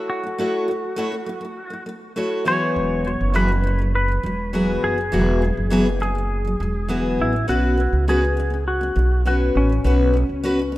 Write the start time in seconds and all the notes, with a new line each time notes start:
Already playing: A3 E4 F#4 C#5
0.10 F#4
0.23 A3 E4
0.38 A3 E4 F#4 C#5
0.68 A3 E4
0.96 A3 E4 F#4 C#5
1.12 A3 E4
1.26 A3 E4
1.41 A3 E4
1.70 A3 E4
1.86 A3 E4
2.16 A3 E4 F#4 C#5
2.45 E3 F#3 B3 F#4 G#4 C#5
2.76 E1
3.05 E3 F#3
3.21 F#1
3.34 E3 F#3 B3 F#4 G#4 B4
3.48 E3 F#3
3.64 E3 F#3
3.79 E3 F#3
3.95 B4
4.08 E3 F#3
4.23 E1 E3 F#3
4.53 E3 F#3 B3 F#4 G#4
4.83 F#1 G#4
4.98 E3 F#3
5.12 E1 E3 F#3 B3 F#4 G#4
5.42 E3 F#3
5.57 F#1
5.70 E3 F#3 B3 F#4 G#4
5.86 E3 F#3
6.00 E3 F#3 G#4
6.15 E3 F#3
6.45 E3 F#3
6.60 E1 E3 F#3
6.88 E3 F#3 B3 F#4 G#4
7.19 A1 E4
7.33 E3 F#3
7.48 B1 B3 C#4 F#4 B4
7.77 B3 C#4
7.93 C#2
8.08 B3 C#4 F#4 G#4 B4
8.22 B3 C#4
8.37 B3 C#4
8.50 B3 C#4
8.68 F#4
8.81 B3 C#4
8.96 B1 B3 C#4
9.25 B3 C#4 F#4 B4
9.55 A1 C#4
9.69 B3 C#4
9.84 B1 B3 C#4 F#4 B4
10.14 B3 C#4
10.29 C#2
10.44 B3 C#4 F#4 B4
10.59 B3 C#4
10.72 B3